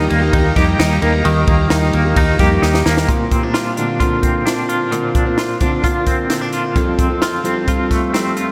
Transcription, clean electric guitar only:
0.00 1.24 D#3 medium
0.00 0.32 D#4 medium
0.10 1.02 A#3 medium
0.33 0.78 D#4 medium
0.56 2.39 G4 medium
0.79 1.70 D#4 medium
1.02 1.48 A#3 medium
1.25 3.08 D#3 loud
1.48 1.94 A#3 medium
1.71 2.16 D#4 medium
1.94 2.85 A#3 medium
2.17 2.61 D#4 medium
2.40 3.13 G4 medium
2.62 3.13 D#4 medium
2.86 3.35 A#3 medium
3.08 4.90 A#2 medium
3.32 3.43 C4 soft
3.43 3.76 D4 soft
3.54 3.99 F4 medium
3.77 4.44 D4 soft
4.00 4.69 F4 medium
4.23 6.06 C4 soft
4.46 5.15 D4 medium
4.69 5.38 F4 medium
4.92 6.76 A#2 medium
5.16 5.60 D4 soft
5.39 5.84 F4 medium
5.61 6.29 D4 medium
5.84 6.53 F4 medium
6.07 6.30 C4 medium
6.30 6.41 C4 medium
6.41 6.81 D4 soft
6.53 7.22 F4 medium
6.76 8.52 F2 medium
6.99 7.44 C4 medium
7.22 7.68 F4 medium
7.45 8.12 C4 medium
7.68 8.36 F4 medium
7.91 8.52 A3 medium
8.14 8.52 C4 medium
8.37 8.52 F4 medium

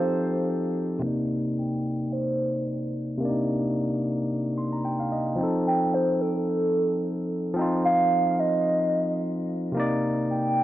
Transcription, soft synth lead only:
0.00 0.48 C5 loud
1.58 2.14 G5 loud
2.12 2.94 C5 loud
5.67 5.96 G5 loud
5.94 6.23 C5 loud
6.21 6.36 A4 medium
6.36 7.26 A4 medium
7.85 8.41 F5 loud
8.40 9.48 D#5 loud
10.30 10.64 G5 loud

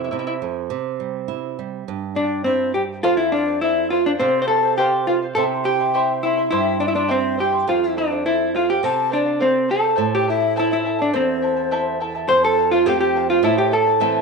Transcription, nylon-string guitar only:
0.00 0.10 F2 soft
0.00 0.11 C3 medium
0.12 0.40 C3 soft
0.42 0.69 F2 medium
0.70 1.83 C3 medium
1.00 1.28 G3 soft
1.28 1.56 E4 medium
1.59 1.86 G3 medium
1.88 3.00 G2 medium
2.16 2.44 G3 soft
2.46 2.74 E4 soft
2.75 3.03 G3 soft
3.04 4.16 F2 medium
4.20 5.33 C3 medium
5.36 6.48 C3 medium
6.52 7.64 G2 medium
7.67 8.80 F2 medium
8.83 9.95 C3 medium
9.98 11.10 A2 medium
11.14 12.26 E2 medium
12.28 13.40 F2 medium
12.86 13.42 F3 soft
12.86 13.42 A3 soft
12.86 13.42 C4 medium
13.43 14.22 A2 medium
14.00 14.22 E3 medium
14.00 14.22 A3 soft
14.00 14.22 C4 medium

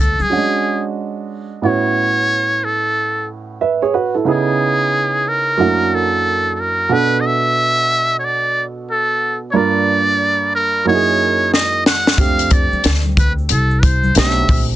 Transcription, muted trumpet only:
0.00 0.23 A4 medium
0.22 0.86 G#4 loud
1.66 2.66 C#5 loud
2.64 3.29 A4 medium
4.30 5.30 G#4 medium
5.28 5.96 A#4 medium
5.95 6.55 A4 medium
6.55 6.62 A4 medium
6.60 6.94 A#4 medium
6.93 7.22 B4 medium
7.21 7.28 D#5 medium
7.26 8.19 E5 loud
8.19 8.26 C#5 medium
8.25 8.64 D5 loud
8.91 9.40 A4 medium
9.51 9.58 C#5 medium
9.56 10.54 D5 loud
10.55 10.85 A#4 medium
10.88 11.49 C#5 loud
11.54 11.84 D#5 loud
11.87 12.21 F#5 loud
12.20 12.54 F5 loud
12.53 12.92 D5 loud
13.19 13.33 B4 medium
13.52 13.81 A4 loud
13.80 13.87 B4 medium
13.85 14.17 C5 medium
14.18 14.67 E5 loud

